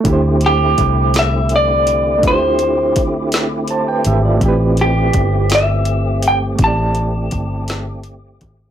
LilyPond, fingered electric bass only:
\new Staff \with { instrumentName = "Fingered electric bass" } { \clef bass \time 6/8 \key d \dorian \tempo 4. = 55 d,4 c,2 | d,4 c,4. gis,,8 | a,,4 g,,2 | a,,4 g,,4. gis,,8 | }